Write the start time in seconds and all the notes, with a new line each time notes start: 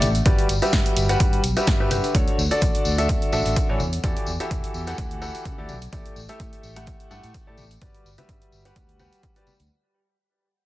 0.01 A1, open hi-hat, tambourine, high conga
0.15 closed hi-hat, tambourine
0.26 G1 G3 F#4 G4 B4 D5, kick, closed hi-hat, tambourine
0.39 closed hi-hat
0.49 G1, open hi-hat, tambourine
0.62 G3 F#4 G4 B4 E5, closed hi-hat, tambourine
0.73 G2, kick, snare, closed hi-hat
0.86 closed hi-hat
0.97 G1, open hi-hat, tambourine
1.09 G3 F#4 G4 B4 F#5, closed hi-hat, tambourine
1.20 G2, kick, closed hi-hat
1.33 closed hi-hat
1.44 B1, open hi-hat, tambourine
1.57 G3 F#4 G4 B4 E5, closed hi-hat, tambourine
1.67 G2, kick, snare, closed hi-hat, tambourine
1.80 G3 F#4 G4 B4 E5
1.91 D3 F#4 G4 B4 E5, open hi-hat, tambourine, high conga
2.04 closed hi-hat, tambourine
2.14 D2 D3 D4 F#4 A4 C#5, kick, closed hi-hat
2.28 closed hi-hat
2.38 D2, tambourine
2.51 D3 D4 F#4 A4 D5, closed hi-hat, tambourine
2.62 A1, kick, closed hi-hat
2.75 closed hi-hat
2.85 D2, tambourine
2.98 D3 D4 F#4 A4 E5, closed hi-hat, tambourine
3.09 kick, closed hi-hat, tambourine
3.22 closed hi-hat
3.32 A1 D3 D4 F#4 A4 E5, tambourine
3.46 A1, closed hi-hat, tambourine
3.56 kick, closed hi-hat
3.69 A1 E3 D4 F#4 A4 C#5
3.80 E2, tambourine, high conga
3.93 closed hi-hat, tambourine
4.04 E2 E3 F#4 G4 A4 D5, kick, closed hi-hat, tambourine
4.17 closed hi-hat
4.26 E2, tambourine
4.40 E3 F#4 G4 A4 E5, closed hi-hat, tambourine
4.51 E1, kick, closed hi-hat, tambourine
4.64 closed hi-hat
4.74 E2, tambourine
4.87 E3 F#4 G4 A4 F#5, closed hi-hat, tambourine
4.98 D2, kick, closed hi-hat
5.11 closed hi-hat
5.22 E3 F#4 G4 A4 F#5, tambourine
5.35 closed hi-hat, tambourine
5.45 C#3, kick, closed hi-hat, tambourine
5.58 D2 E3 F#4 G4 A4 D5
5.69 B1, tambourine, high conga
5.82 closed hi-hat, tambourine
5.92 A1 A3 E4 G4 A4 D5, kick, closed hi-hat, tambourine
6.06 closed hi-hat
6.16 A1, tambourine
6.29 A3 E4 G4 A4 E5, closed hi-hat, tambourine
6.40 A2, kick, closed hi-hat, tambourine
6.53 closed hi-hat
6.63 A1, tambourine
6.76 A3 E4 G4 A4 F#5, closed hi-hat, tambourine
6.86 kick, closed hi-hat, tambourine
7.00 closed hi-hat
7.11 G2 A3 E4 G4 A4 F#5, tambourine
7.23 A2, closed hi-hat, tambourine
7.34 kick, closed hi-hat, tambourine
7.47 A2 A3 E4 G4 A4 D5
7.57 A1, tambourine, high conga
7.71 closed hi-hat, tambourine
7.82 G1 G3 F#4 G4 B4 D5, kick, closed hi-hat
7.94 closed hi-hat
8.05 G1, tambourine
8.18 G3 F#4 G4 B4 E5, closed hi-hat, tambourine, high conga
8.29 G2, kick, closed hi-hat, tambourine
8.42 closed hi-hat
8.52 G1, tambourine
8.65 G3 F#4 G4 B4 F#5, closed hi-hat
8.76 D2, kick, closed hi-hat, tambourine
8.89 closed hi-hat
8.99 G3 F#4 G4 B4 F#5, tambourine, high conga
9.13 closed hi-hat, tambourine
9.23 kick, closed hi-hat
9.36 G3 F#4 G4 B4 D5, closed hi-hat
9.47 tambourine, high conga
9.60 D2, closed hi-hat, tambourine